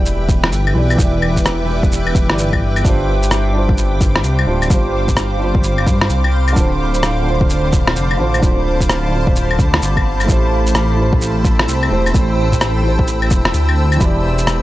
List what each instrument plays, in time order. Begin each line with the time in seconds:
Already playing: detuned saw bass E1, felt piano E3 E4 G4 D5, ambient pad B4 E5 G5 D6
0.06 shaker
0.29 kick, shaker
0.44 cross-stick
0.52 detuned saw bass G1, shaker
0.67 claves
0.74 detuned saw bass B1, felt piano E3 E4 G4 D5
0.90 claves, shaker
0.95 detuned saw bass E1, felt piano E3 E4, kick
0.99 felt piano G4 D5, shaker
1.22 claves
1.37 kick, shaker
1.46 cross-stick, shaker
1.65 felt piano E3 E4
1.70 felt piano G4 D5
1.83 kick, shaker
1.92 shaker
2.07 claves
2.15 detuned saw bass E1, kick, shaker
2.28 detuned saw bass G1, felt piano E3 E4 G4, cross-stick
2.32 felt piano D5
2.38 shaker
2.53 kick, claves
2.76 claves, shaker
2.81 detuned saw bass G1, felt piano G3 D4, synth texture B5, kick, shaker
2.85 felt piano F4 C5, ambient pad C5 F5
3.23 shaker
3.31 cross-stick, shaker
3.50 felt piano G3 D4
3.56 felt piano F4 C5
3.69 kick
3.78 shaker
4.01 kick, shaker
4.16 cross-stick
4.24 detuned saw bass C2, shaker
4.39 claves
4.46 detuned saw bass D1, felt piano G3 D4 F4 C5
4.62 claves, shaker
4.67 detuned saw bass G1, felt piano G3 D4, kick, shaker
4.72 felt piano F4 C5
5.08 kick, shaker
5.17 cross-stick, shaker
5.36 felt piano G3 D4
5.42 felt piano F4 C5
5.55 kick
5.64 shaker
5.78 claves
5.87 detuned saw bass G2, kick, shaker
6.01 cross-stick
6.10 detuned saw bass C2, shaker
6.24 claves
6.48 claves, shaker
6.52 detuned saw bass D1, felt piano D3 D4, kick, shaker
6.57 felt piano F4 C5, ambient pad A5
6.94 shaker
7.03 cross-stick, shaker
7.23 felt piano D3 D4
7.28 felt piano F4 C5
7.41 kick
7.50 shaker
7.73 kick, shaker
7.87 cross-stick
7.96 detuned saw bass F1, shaker
8.11 claves
8.17 detuned saw bass A1, felt piano D3 D4 F4
8.21 felt piano C5
8.34 claves, shaker
8.39 detuned saw bass D1, felt piano D3 D4, kick
8.43 felt piano F4 C5, shaker
8.81 kick, shaker
8.89 cross-stick, shaker
9.08 felt piano D3 D4
9.14 felt piano F4 C5
9.27 kick
9.36 shaker
9.51 claves
9.59 detuned saw bass D2, kick, shaker
9.74 cross-stick
9.82 detuned saw bass G1, shaker
9.97 kick, claves
10.20 claves, shaker
10.24 felt piano A3 E4, ambient pad G5
10.28 detuned saw bass A1, felt piano G4 C5, ambient pad C5 E6, kick, shaker
10.67 shaker
10.75 cross-stick, shaker
10.94 felt piano A3 E4
10.99 felt piano G4 C5
11.13 kick
11.21 shaker
11.45 kick, shaker
11.59 cross-stick
11.68 detuned saw bass C2, shaker
11.83 claves
11.89 detuned saw bass E1, felt piano A3 E4 G4
11.93 felt piano C5
12.06 claves, shaker
12.10 felt piano A3 E4
12.14 detuned saw bass A1, felt piano G4, kick, shaker
12.19 felt piano C5
12.52 kick, shaker
12.61 cross-stick, shaker
12.80 felt piano A3 E4
12.86 felt piano G4 C5
12.99 kick
13.07 shaker
13.22 claves
13.30 detuned saw bass E1, kick, shaker
13.45 cross-stick
13.54 detuned saw bass D2, shaker
13.69 claves
13.92 claves, shaker
13.97 detuned saw bass E1, felt piano E3 E4, ambient pad G5 B5, kick, shaker
14.01 felt piano G4 D5, ambient pad D5
14.38 shaker
14.47 cross-stick, shaker